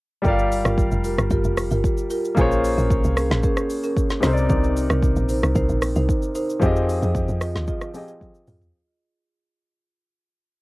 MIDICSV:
0, 0, Header, 1, 5, 480
1, 0, Start_track
1, 0, Tempo, 530973
1, 224, Time_signature, 4, 2, 24, 8
1, 9600, End_track
2, 0, Start_track
2, 0, Title_t, "Marimba"
2, 0, Program_c, 0, 12
2, 221, Note_on_c, 0, 65, 91
2, 224, Note_on_c, 0, 67, 86
2, 227, Note_on_c, 0, 70, 104
2, 558, Note_off_c, 0, 65, 0
2, 559, Note_off_c, 0, 67, 0
2, 561, Note_off_c, 0, 70, 0
2, 586, Note_on_c, 0, 65, 78
2, 589, Note_on_c, 0, 67, 68
2, 592, Note_on_c, 0, 70, 80
2, 708, Note_off_c, 0, 65, 0
2, 710, Note_off_c, 0, 67, 0
2, 711, Note_off_c, 0, 70, 0
2, 942, Note_on_c, 0, 65, 75
2, 945, Note_on_c, 0, 67, 68
2, 947, Note_on_c, 0, 70, 89
2, 1073, Note_off_c, 0, 65, 0
2, 1074, Note_off_c, 0, 67, 0
2, 1076, Note_off_c, 0, 70, 0
2, 1180, Note_on_c, 0, 65, 92
2, 1183, Note_on_c, 0, 67, 85
2, 1186, Note_on_c, 0, 70, 104
2, 1312, Note_off_c, 0, 65, 0
2, 1313, Note_off_c, 0, 67, 0
2, 1315, Note_off_c, 0, 70, 0
2, 1547, Note_on_c, 0, 65, 82
2, 1550, Note_on_c, 0, 67, 73
2, 1551, Note_on_c, 0, 70, 89
2, 1875, Note_off_c, 0, 65, 0
2, 1877, Note_off_c, 0, 67, 0
2, 1878, Note_off_c, 0, 70, 0
2, 1900, Note_on_c, 0, 65, 84
2, 1903, Note_on_c, 0, 67, 72
2, 1906, Note_on_c, 0, 70, 87
2, 2124, Note_off_c, 0, 65, 0
2, 2125, Note_off_c, 0, 67, 0
2, 2127, Note_off_c, 0, 70, 0
2, 2141, Note_on_c, 0, 61, 91
2, 2145, Note_on_c, 0, 68, 88
2, 2147, Note_on_c, 0, 70, 105
2, 2477, Note_off_c, 0, 61, 0
2, 2479, Note_off_c, 0, 68, 0
2, 2481, Note_off_c, 0, 70, 0
2, 2507, Note_on_c, 0, 61, 78
2, 2510, Note_on_c, 0, 68, 68
2, 2512, Note_on_c, 0, 70, 85
2, 2629, Note_off_c, 0, 61, 0
2, 2630, Note_off_c, 0, 68, 0
2, 2631, Note_off_c, 0, 70, 0
2, 2862, Note_on_c, 0, 61, 80
2, 2865, Note_on_c, 0, 68, 69
2, 2867, Note_on_c, 0, 70, 87
2, 2993, Note_off_c, 0, 61, 0
2, 2994, Note_off_c, 0, 68, 0
2, 2995, Note_off_c, 0, 70, 0
2, 3102, Note_on_c, 0, 61, 91
2, 3104, Note_on_c, 0, 68, 83
2, 3107, Note_on_c, 0, 70, 104
2, 3438, Note_off_c, 0, 61, 0
2, 3439, Note_off_c, 0, 68, 0
2, 3440, Note_off_c, 0, 70, 0
2, 3467, Note_on_c, 0, 61, 82
2, 3469, Note_on_c, 0, 68, 73
2, 3472, Note_on_c, 0, 70, 91
2, 3588, Note_off_c, 0, 61, 0
2, 3589, Note_off_c, 0, 68, 0
2, 3591, Note_off_c, 0, 70, 0
2, 3823, Note_on_c, 0, 63, 79
2, 3826, Note_on_c, 0, 70, 73
2, 3829, Note_on_c, 0, 72, 86
2, 3953, Note_off_c, 0, 63, 0
2, 3955, Note_off_c, 0, 70, 0
2, 3956, Note_off_c, 0, 72, 0
2, 4063, Note_on_c, 0, 63, 95
2, 4066, Note_on_c, 0, 70, 84
2, 4069, Note_on_c, 0, 72, 100
2, 4398, Note_off_c, 0, 63, 0
2, 4400, Note_off_c, 0, 70, 0
2, 4401, Note_off_c, 0, 72, 0
2, 4426, Note_on_c, 0, 63, 78
2, 4429, Note_on_c, 0, 70, 73
2, 4432, Note_on_c, 0, 72, 86
2, 4548, Note_off_c, 0, 63, 0
2, 4550, Note_off_c, 0, 70, 0
2, 4551, Note_off_c, 0, 72, 0
2, 4782, Note_on_c, 0, 63, 79
2, 4785, Note_on_c, 0, 70, 70
2, 4787, Note_on_c, 0, 72, 87
2, 4913, Note_off_c, 0, 63, 0
2, 4915, Note_off_c, 0, 70, 0
2, 4916, Note_off_c, 0, 72, 0
2, 5021, Note_on_c, 0, 63, 90
2, 5024, Note_on_c, 0, 70, 91
2, 5027, Note_on_c, 0, 72, 103
2, 5153, Note_off_c, 0, 63, 0
2, 5154, Note_off_c, 0, 70, 0
2, 5155, Note_off_c, 0, 72, 0
2, 5387, Note_on_c, 0, 63, 83
2, 5390, Note_on_c, 0, 70, 75
2, 5393, Note_on_c, 0, 72, 85
2, 5716, Note_off_c, 0, 63, 0
2, 5717, Note_off_c, 0, 70, 0
2, 5719, Note_off_c, 0, 72, 0
2, 5741, Note_on_c, 0, 63, 81
2, 5743, Note_on_c, 0, 70, 77
2, 5747, Note_on_c, 0, 72, 92
2, 5964, Note_off_c, 0, 63, 0
2, 5965, Note_off_c, 0, 70, 0
2, 5967, Note_off_c, 0, 72, 0
2, 5982, Note_on_c, 0, 65, 93
2, 5984, Note_on_c, 0, 68, 83
2, 5988, Note_on_c, 0, 75, 102
2, 6318, Note_off_c, 0, 65, 0
2, 6319, Note_off_c, 0, 68, 0
2, 6321, Note_off_c, 0, 75, 0
2, 6348, Note_on_c, 0, 65, 78
2, 6350, Note_on_c, 0, 68, 70
2, 6353, Note_on_c, 0, 75, 84
2, 6469, Note_off_c, 0, 65, 0
2, 6470, Note_off_c, 0, 68, 0
2, 6471, Note_off_c, 0, 75, 0
2, 6702, Note_on_c, 0, 65, 78
2, 6705, Note_on_c, 0, 68, 69
2, 6708, Note_on_c, 0, 75, 86
2, 6833, Note_off_c, 0, 65, 0
2, 6835, Note_off_c, 0, 68, 0
2, 6836, Note_off_c, 0, 75, 0
2, 6943, Note_on_c, 0, 65, 96
2, 6945, Note_on_c, 0, 68, 81
2, 6948, Note_on_c, 0, 75, 98
2, 7278, Note_off_c, 0, 65, 0
2, 7280, Note_off_c, 0, 68, 0
2, 7281, Note_off_c, 0, 75, 0
2, 7306, Note_on_c, 0, 65, 79
2, 7310, Note_on_c, 0, 68, 74
2, 7312, Note_on_c, 0, 75, 89
2, 7428, Note_off_c, 0, 65, 0
2, 7430, Note_off_c, 0, 68, 0
2, 7431, Note_off_c, 0, 75, 0
2, 7662, Note_on_c, 0, 65, 81
2, 7665, Note_on_c, 0, 68, 74
2, 7667, Note_on_c, 0, 75, 88
2, 7793, Note_off_c, 0, 65, 0
2, 7794, Note_off_c, 0, 68, 0
2, 7796, Note_off_c, 0, 75, 0
2, 9600, End_track
3, 0, Start_track
3, 0, Title_t, "Grand piano"
3, 0, Program_c, 1, 0
3, 200, Note_on_c, 1, 55, 80
3, 214, Note_on_c, 1, 67, 71
3, 229, Note_on_c, 1, 70, 69
3, 243, Note_on_c, 1, 74, 72
3, 257, Note_on_c, 1, 77, 89
3, 386, Control_c, 1, 64, 127
3, 2096, Note_off_c, 1, 55, 0
3, 2103, Note_off_c, 1, 67, 0
3, 2110, Note_off_c, 1, 70, 0
3, 2117, Note_off_c, 1, 74, 0
3, 2120, Note_on_c, 1, 58, 76
3, 2124, Note_off_c, 1, 77, 0
3, 2134, Note_on_c, 1, 65, 71
3, 2148, Note_on_c, 1, 68, 70
3, 2157, Control_c, 1, 64, 0
3, 2162, Note_on_c, 1, 72, 72
3, 2177, Note_on_c, 1, 73, 87
3, 2336, Control_c, 1, 64, 127
3, 3778, Note_off_c, 1, 58, 0
3, 3785, Note_off_c, 1, 65, 0
3, 3792, Note_off_c, 1, 68, 0
3, 3800, Note_off_c, 1, 72, 0
3, 3801, Note_on_c, 1, 48, 75
3, 3807, Note_off_c, 1, 73, 0
3, 3814, Note_on_c, 1, 60, 70
3, 3829, Note_on_c, 1, 63, 70
3, 3836, Control_c, 1, 64, 0
3, 3843, Note_on_c, 1, 70, 72
3, 3858, Note_on_c, 1, 72, 66
3, 3901, Note_off_c, 1, 72, 0
3, 3915, Note_on_c, 1, 74, 81
3, 3981, Control_c, 1, 64, 127
3, 5697, Note_off_c, 1, 48, 0
3, 5703, Note_off_c, 1, 60, 0
3, 5710, Note_off_c, 1, 63, 0
3, 5718, Note_off_c, 1, 70, 0
3, 5754, Note_off_c, 1, 74, 0
3, 5961, Note_on_c, 1, 53, 78
3, 5975, Note_on_c, 1, 60, 74
3, 5989, Note_on_c, 1, 67, 74
3, 5997, Control_c, 1, 64, 0
3, 6003, Note_on_c, 1, 68, 71
3, 6018, Note_on_c, 1, 75, 87
3, 6137, Control_c, 1, 64, 127
3, 7148, Note_off_c, 1, 53, 0
3, 7155, Note_off_c, 1, 60, 0
3, 7163, Note_off_c, 1, 67, 0
3, 7170, Note_off_c, 1, 68, 0
3, 7176, Note_on_c, 1, 53, 60
3, 7177, Note_off_c, 1, 75, 0
3, 7183, Note_on_c, 1, 60, 53
3, 7190, Note_on_c, 1, 67, 51
3, 7199, Note_on_c, 1, 68, 52
3, 7204, Note_on_c, 1, 75, 62
3, 7900, Note_off_c, 1, 53, 0
3, 7904, Note_off_c, 1, 60, 0
3, 7907, Note_off_c, 1, 67, 0
3, 7911, Note_off_c, 1, 68, 0
3, 7914, Note_off_c, 1, 75, 0
3, 7917, Control_c, 1, 64, 0
3, 9600, End_track
4, 0, Start_track
4, 0, Title_t, "Log drum bass"
4, 0, Program_c, 2, 39
4, 224, Note_on_c, 2, 31, 105
4, 575, Note_off_c, 2, 31, 0
4, 590, Note_on_c, 2, 31, 96
4, 820, Note_off_c, 2, 31, 0
4, 830, Note_on_c, 2, 29, 93
4, 1060, Note_off_c, 2, 29, 0
4, 1070, Note_on_c, 2, 31, 91
4, 1176, Note_off_c, 2, 31, 0
4, 1182, Note_on_c, 2, 31, 99
4, 1303, Note_off_c, 2, 31, 0
4, 1311, Note_on_c, 2, 29, 96
4, 1540, Note_off_c, 2, 29, 0
4, 1550, Note_on_c, 2, 31, 99
4, 1660, Note_off_c, 2, 31, 0
4, 2144, Note_on_c, 2, 34, 107
4, 2494, Note_off_c, 2, 34, 0
4, 2509, Note_on_c, 2, 34, 95
4, 2740, Note_off_c, 2, 34, 0
4, 2750, Note_on_c, 2, 36, 90
4, 2980, Note_off_c, 2, 36, 0
4, 2989, Note_on_c, 2, 34, 97
4, 3100, Note_off_c, 2, 34, 0
4, 3825, Note_on_c, 2, 36, 102
4, 4055, Note_off_c, 2, 36, 0
4, 4065, Note_on_c, 2, 36, 114
4, 4415, Note_off_c, 2, 36, 0
4, 4430, Note_on_c, 2, 36, 93
4, 4660, Note_off_c, 2, 36, 0
4, 4670, Note_on_c, 2, 34, 90
4, 4900, Note_off_c, 2, 34, 0
4, 4911, Note_on_c, 2, 36, 90
4, 5017, Note_off_c, 2, 36, 0
4, 5023, Note_on_c, 2, 36, 97
4, 5143, Note_off_c, 2, 36, 0
4, 5149, Note_on_c, 2, 34, 85
4, 5380, Note_off_c, 2, 34, 0
4, 5390, Note_on_c, 2, 36, 100
4, 5500, Note_off_c, 2, 36, 0
4, 5984, Note_on_c, 2, 41, 110
4, 6334, Note_off_c, 2, 41, 0
4, 6350, Note_on_c, 2, 41, 97
4, 6580, Note_off_c, 2, 41, 0
4, 6588, Note_on_c, 2, 41, 86
4, 6819, Note_off_c, 2, 41, 0
4, 6829, Note_on_c, 2, 39, 93
4, 6940, Note_off_c, 2, 39, 0
4, 7664, Note_on_c, 2, 41, 99
4, 7895, Note_off_c, 2, 41, 0
4, 9600, End_track
5, 0, Start_track
5, 0, Title_t, "Drums"
5, 224, Note_on_c, 9, 36, 115
5, 224, Note_on_c, 9, 82, 85
5, 314, Note_off_c, 9, 36, 0
5, 315, Note_off_c, 9, 82, 0
5, 354, Note_on_c, 9, 82, 50
5, 444, Note_off_c, 9, 82, 0
5, 471, Note_on_c, 9, 46, 59
5, 471, Note_on_c, 9, 82, 96
5, 561, Note_off_c, 9, 46, 0
5, 561, Note_off_c, 9, 82, 0
5, 590, Note_on_c, 9, 37, 103
5, 593, Note_on_c, 9, 82, 57
5, 680, Note_off_c, 9, 37, 0
5, 683, Note_off_c, 9, 82, 0
5, 703, Note_on_c, 9, 36, 105
5, 710, Note_on_c, 9, 82, 76
5, 794, Note_off_c, 9, 36, 0
5, 800, Note_off_c, 9, 82, 0
5, 827, Note_on_c, 9, 82, 59
5, 918, Note_off_c, 9, 82, 0
5, 943, Note_on_c, 9, 46, 57
5, 943, Note_on_c, 9, 82, 98
5, 1034, Note_off_c, 9, 46, 0
5, 1034, Note_off_c, 9, 82, 0
5, 1071, Note_on_c, 9, 37, 107
5, 1072, Note_on_c, 9, 82, 60
5, 1162, Note_off_c, 9, 37, 0
5, 1162, Note_off_c, 9, 82, 0
5, 1179, Note_on_c, 9, 82, 79
5, 1182, Note_on_c, 9, 36, 94
5, 1270, Note_off_c, 9, 82, 0
5, 1272, Note_off_c, 9, 36, 0
5, 1305, Note_on_c, 9, 82, 64
5, 1395, Note_off_c, 9, 82, 0
5, 1423, Note_on_c, 9, 46, 57
5, 1423, Note_on_c, 9, 82, 98
5, 1424, Note_on_c, 9, 37, 96
5, 1514, Note_off_c, 9, 37, 0
5, 1514, Note_off_c, 9, 46, 0
5, 1514, Note_off_c, 9, 82, 0
5, 1543, Note_on_c, 9, 82, 52
5, 1634, Note_off_c, 9, 82, 0
5, 1664, Note_on_c, 9, 36, 91
5, 1670, Note_on_c, 9, 82, 78
5, 1754, Note_off_c, 9, 36, 0
5, 1760, Note_off_c, 9, 82, 0
5, 1785, Note_on_c, 9, 82, 59
5, 1876, Note_off_c, 9, 82, 0
5, 1902, Note_on_c, 9, 46, 53
5, 1902, Note_on_c, 9, 82, 94
5, 1993, Note_off_c, 9, 46, 0
5, 1993, Note_off_c, 9, 82, 0
5, 2032, Note_on_c, 9, 82, 53
5, 2123, Note_off_c, 9, 82, 0
5, 2143, Note_on_c, 9, 82, 85
5, 2144, Note_on_c, 9, 36, 119
5, 2233, Note_off_c, 9, 82, 0
5, 2234, Note_off_c, 9, 36, 0
5, 2272, Note_on_c, 9, 82, 52
5, 2362, Note_off_c, 9, 82, 0
5, 2390, Note_on_c, 9, 46, 59
5, 2390, Note_on_c, 9, 82, 103
5, 2480, Note_off_c, 9, 46, 0
5, 2480, Note_off_c, 9, 82, 0
5, 2511, Note_on_c, 9, 82, 57
5, 2602, Note_off_c, 9, 82, 0
5, 2623, Note_on_c, 9, 36, 105
5, 2628, Note_on_c, 9, 82, 78
5, 2713, Note_off_c, 9, 36, 0
5, 2719, Note_off_c, 9, 82, 0
5, 2746, Note_on_c, 9, 82, 58
5, 2836, Note_off_c, 9, 82, 0
5, 2862, Note_on_c, 9, 37, 105
5, 2863, Note_on_c, 9, 46, 59
5, 2863, Note_on_c, 9, 82, 96
5, 2953, Note_off_c, 9, 37, 0
5, 2954, Note_off_c, 9, 46, 0
5, 2954, Note_off_c, 9, 82, 0
5, 2993, Note_on_c, 9, 38, 77
5, 2993, Note_on_c, 9, 82, 61
5, 3083, Note_off_c, 9, 38, 0
5, 3084, Note_off_c, 9, 82, 0
5, 3100, Note_on_c, 9, 82, 75
5, 3103, Note_on_c, 9, 36, 96
5, 3190, Note_off_c, 9, 82, 0
5, 3193, Note_off_c, 9, 36, 0
5, 3224, Note_on_c, 9, 82, 64
5, 3225, Note_on_c, 9, 37, 97
5, 3315, Note_off_c, 9, 82, 0
5, 3316, Note_off_c, 9, 37, 0
5, 3343, Note_on_c, 9, 46, 56
5, 3343, Note_on_c, 9, 82, 97
5, 3434, Note_off_c, 9, 46, 0
5, 3434, Note_off_c, 9, 82, 0
5, 3463, Note_on_c, 9, 82, 52
5, 3553, Note_off_c, 9, 82, 0
5, 3585, Note_on_c, 9, 36, 91
5, 3591, Note_on_c, 9, 82, 83
5, 3675, Note_off_c, 9, 36, 0
5, 3681, Note_off_c, 9, 82, 0
5, 3706, Note_on_c, 9, 82, 59
5, 3710, Note_on_c, 9, 38, 63
5, 3796, Note_off_c, 9, 82, 0
5, 3801, Note_off_c, 9, 38, 0
5, 3822, Note_on_c, 9, 46, 55
5, 3822, Note_on_c, 9, 82, 94
5, 3823, Note_on_c, 9, 37, 92
5, 3823, Note_on_c, 9, 38, 69
5, 3913, Note_off_c, 9, 46, 0
5, 3913, Note_off_c, 9, 82, 0
5, 3914, Note_off_c, 9, 37, 0
5, 3914, Note_off_c, 9, 38, 0
5, 3952, Note_on_c, 9, 82, 54
5, 4043, Note_off_c, 9, 82, 0
5, 4065, Note_on_c, 9, 36, 121
5, 4065, Note_on_c, 9, 82, 84
5, 4155, Note_off_c, 9, 36, 0
5, 4155, Note_off_c, 9, 82, 0
5, 4193, Note_on_c, 9, 82, 50
5, 4284, Note_off_c, 9, 82, 0
5, 4311, Note_on_c, 9, 46, 62
5, 4311, Note_on_c, 9, 82, 102
5, 4401, Note_off_c, 9, 46, 0
5, 4401, Note_off_c, 9, 82, 0
5, 4430, Note_on_c, 9, 37, 105
5, 4433, Note_on_c, 9, 82, 57
5, 4520, Note_off_c, 9, 37, 0
5, 4523, Note_off_c, 9, 82, 0
5, 4543, Note_on_c, 9, 36, 106
5, 4549, Note_on_c, 9, 82, 75
5, 4634, Note_off_c, 9, 36, 0
5, 4640, Note_off_c, 9, 82, 0
5, 4667, Note_on_c, 9, 82, 57
5, 4758, Note_off_c, 9, 82, 0
5, 4784, Note_on_c, 9, 46, 59
5, 4784, Note_on_c, 9, 82, 99
5, 4875, Note_off_c, 9, 46, 0
5, 4875, Note_off_c, 9, 82, 0
5, 4913, Note_on_c, 9, 37, 107
5, 4914, Note_on_c, 9, 82, 62
5, 5004, Note_off_c, 9, 37, 0
5, 5004, Note_off_c, 9, 82, 0
5, 5022, Note_on_c, 9, 82, 78
5, 5023, Note_on_c, 9, 36, 98
5, 5112, Note_off_c, 9, 82, 0
5, 5113, Note_off_c, 9, 36, 0
5, 5146, Note_on_c, 9, 82, 63
5, 5236, Note_off_c, 9, 82, 0
5, 5263, Note_on_c, 9, 37, 102
5, 5263, Note_on_c, 9, 46, 55
5, 5263, Note_on_c, 9, 82, 92
5, 5353, Note_off_c, 9, 46, 0
5, 5353, Note_off_c, 9, 82, 0
5, 5354, Note_off_c, 9, 37, 0
5, 5384, Note_on_c, 9, 82, 51
5, 5475, Note_off_c, 9, 82, 0
5, 5504, Note_on_c, 9, 36, 87
5, 5511, Note_on_c, 9, 82, 83
5, 5595, Note_off_c, 9, 36, 0
5, 5601, Note_off_c, 9, 82, 0
5, 5626, Note_on_c, 9, 82, 59
5, 5716, Note_off_c, 9, 82, 0
5, 5742, Note_on_c, 9, 46, 54
5, 5742, Note_on_c, 9, 82, 93
5, 5833, Note_off_c, 9, 46, 0
5, 5833, Note_off_c, 9, 82, 0
5, 5872, Note_on_c, 9, 82, 55
5, 5962, Note_off_c, 9, 82, 0
5, 5983, Note_on_c, 9, 82, 82
5, 5984, Note_on_c, 9, 36, 121
5, 6073, Note_off_c, 9, 82, 0
5, 6074, Note_off_c, 9, 36, 0
5, 6112, Note_on_c, 9, 82, 50
5, 6203, Note_off_c, 9, 82, 0
5, 6232, Note_on_c, 9, 46, 56
5, 6232, Note_on_c, 9, 82, 96
5, 6322, Note_off_c, 9, 46, 0
5, 6322, Note_off_c, 9, 82, 0
5, 6352, Note_on_c, 9, 82, 58
5, 6442, Note_off_c, 9, 82, 0
5, 6463, Note_on_c, 9, 36, 107
5, 6467, Note_on_c, 9, 82, 75
5, 6553, Note_off_c, 9, 36, 0
5, 6558, Note_off_c, 9, 82, 0
5, 6585, Note_on_c, 9, 82, 56
5, 6676, Note_off_c, 9, 82, 0
5, 6702, Note_on_c, 9, 37, 104
5, 6703, Note_on_c, 9, 46, 57
5, 6703, Note_on_c, 9, 82, 101
5, 6792, Note_off_c, 9, 37, 0
5, 6794, Note_off_c, 9, 46, 0
5, 6794, Note_off_c, 9, 82, 0
5, 6833, Note_on_c, 9, 38, 75
5, 6834, Note_on_c, 9, 82, 60
5, 6923, Note_off_c, 9, 38, 0
5, 6924, Note_off_c, 9, 82, 0
5, 6941, Note_on_c, 9, 82, 76
5, 6943, Note_on_c, 9, 36, 99
5, 7031, Note_off_c, 9, 82, 0
5, 7033, Note_off_c, 9, 36, 0
5, 7065, Note_on_c, 9, 82, 64
5, 7066, Note_on_c, 9, 37, 92
5, 7155, Note_off_c, 9, 82, 0
5, 7156, Note_off_c, 9, 37, 0
5, 7183, Note_on_c, 9, 46, 55
5, 7183, Note_on_c, 9, 82, 94
5, 7274, Note_off_c, 9, 46, 0
5, 7274, Note_off_c, 9, 82, 0
5, 7303, Note_on_c, 9, 82, 53
5, 7393, Note_off_c, 9, 82, 0
5, 7423, Note_on_c, 9, 48, 60
5, 7425, Note_on_c, 9, 36, 83
5, 7430, Note_on_c, 9, 82, 82
5, 7514, Note_off_c, 9, 48, 0
5, 7515, Note_off_c, 9, 36, 0
5, 7521, Note_off_c, 9, 82, 0
5, 7546, Note_on_c, 9, 82, 60
5, 7636, Note_off_c, 9, 82, 0
5, 7663, Note_on_c, 9, 46, 55
5, 7663, Note_on_c, 9, 82, 98
5, 7664, Note_on_c, 9, 45, 96
5, 7753, Note_off_c, 9, 46, 0
5, 7753, Note_off_c, 9, 82, 0
5, 7754, Note_off_c, 9, 45, 0
5, 7789, Note_on_c, 9, 43, 94
5, 7792, Note_on_c, 9, 82, 54
5, 7879, Note_off_c, 9, 43, 0
5, 7882, Note_off_c, 9, 82, 0
5, 9600, End_track
0, 0, End_of_file